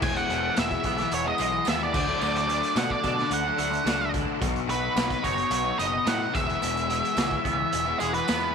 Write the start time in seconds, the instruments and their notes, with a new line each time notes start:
0.02 picked electric bass E1, clean electric guitar E2, overdriven electric guitar E3 G#3 B3 E4, string machine E4 G#4 F#5, lead electric guitar G#5, kick, tambourine, crash
0.16 lead electric guitar F#5, closed hi-hat
0.29 picked electric bass E1, clean electric guitar B2, overdriven electric guitar E3 G#3 B3 E4, closed hi-hat, tambourine
0.55 picked electric bass E1, overdriven electric guitar E3 G#3 B3 E4, clean electric guitar F#3, lead electric guitar E5, snare, closed hi-hat, tambourine
0.71 kick, closed hi-hat
0.83 picked electric bass B1, overdriven electric guitar E3 G#3 B3 E4, kick, closed hi-hat
0.98 muted overdriven electric guitar stroke, snare, closed hi-hat
1.11 picked electric bass E1, clean electric guitar F#3, lead electric guitar C#5, closed hi-hat, tambourine
1.24 overdriven electric guitar G#3 B3 E4, lead electric guitar D#5
1.37 picked electric bass B1, overdriven electric guitar E3 G#3 B3 E4, closed hi-hat, tambourine
1.52 muted overdriven electric guitar stroke
1.65 picked electric bass D#2, overdriven electric guitar E3 G#3 B3 E4, snare, closed hi-hat, tambourine
1.69 lead electric guitar E5
1.83 lead electric guitar D5
1.93 picked electric bass D2, overdriven electric guitar D3 F#3 A3 D4, string machine D4 A4, kick, tambourine, crash
2.07 overdriven electric guitar F#3 A3 D4
2.20 picked electric bass D2, overdriven electric guitar D3 F#3 A3 D4, lead electric guitar D5, tambourine
2.36 lead electric guitar D5, closed hi-hat
2.48 overdriven electric guitar D3 F#3 A3 D4, closed hi-hat, tambourine
2.63 closed hi-hat
2.75 picked electric bass B2, overdriven electric guitar D3 F#3 A3 D4, lead electric guitar F#5, snare, closed hi-hat, tambourine
2.90 lead electric guitar D5, kick
3.03 picked electric bass B2, overdriven electric guitar D3 F#3 A3 D4, kick, closed hi-hat, tambourine
3.17 muted overdriven electric guitar stroke, snare
3.31 picked electric bass D2, clean electric guitar D3, lead electric guitar F#5, closed hi-hat, tambourine
3.44 overdriven electric guitar F#3 A3 D4
3.57 picked electric bass D2, overdriven electric guitar D3 F#3 A3 D4, closed hi-hat, tambourine
3.72 muted overdriven electric guitar stroke, closed hi-hat
3.84 picked electric bass C#2, overdriven electric guitar D3 F#3 A3, snare, closed hi-hat, tambourine
3.88 overdriven electric guitar D4
4.11 overdriven electric guitar D3 F#3 A3 D4, kick, closed hi-hat, tambourine
4.26 overdriven electric guitar F#3 A3 D4
4.40 picked electric bass B1, overdriven electric guitar B2 F#3 B3 D#4, string machine D#4 B4, kick, closed hi-hat, tambourine
4.56 closed hi-hat
4.68 picked electric bass B1, overdriven electric guitar B2 F#3 B3 D#4, lead electric guitar B4, closed hi-hat, tambourine
4.96 picked electric bass B1, overdriven electric guitar B2 F#3 B3 D#4, snare, closed hi-hat, tambourine
5.10 kick, closed hi-hat
5.23 picked electric bass F#1, overdriven electric guitar B2 F#3 B3 D#4, lead electric guitar C#5, kick, closed hi-hat, tambourine
5.37 muted overdriven electric guitar stroke, closed hi-hat
5.51 picked electric bass B1, clean electric guitar F#3, closed hi-hat, tambourine
5.64 overdriven electric guitar F#3 B3 D#4
5.77 picked electric bass F#1, overdriven electric guitar B2 F#3 B3 D#4, lead electric guitar D#5, closed hi-hat, tambourine
5.93 muted overdriven electric guitar stroke
6.05 picked electric bass A2, overdriven electric guitar B2 F#3 B3 D#4, lead electric guitar F#5, snare, closed hi-hat, tambourine
6.33 picked electric bass E1, clean electric guitar E2, overdriven electric guitar E3 G#3 B3 E4, string machine E4 G#4, lead electric guitar E5, kick, closed hi-hat, tambourine
6.47 overdriven electric guitar G#3 B3 E4, closed hi-hat
6.60 picked electric bass E1, clean electric guitar E2, overdriven electric guitar E3 G#3 B3 E4, closed hi-hat, tambourine
6.77 closed hi-hat
6.88 clean electric guitar B2, overdriven electric guitar E3 G#3 B3 E4, closed hi-hat, tambourine
7.05 closed hi-hat
7.16 picked electric bass C#2, overdriven electric guitar E3 G#3 B3 E4, clean electric guitar F#3, snare, closed hi-hat, tambourine
7.31 kick
7.44 picked electric bass C#2, overdriven electric guitar E3 G#3 B3 E4, kick, closed hi-hat
7.58 muted overdriven electric guitar stroke
7.71 picked electric bass E1, clean electric guitar F#3, closed hi-hat, tambourine
7.85 overdriven electric guitar G#3 B3 E4
8.00 picked electric bass E1, overdriven electric guitar E3 G#3 B3 E4, lead electric guitar G#4, closed hi-hat, tambourine
8.14 lead electric guitar B4, muted overdriven electric guitar stroke, closed hi-hat
8.28 picked electric bass E2, overdriven electric guitar E3 G#3 B3 E4, snare, closed hi-hat, tambourine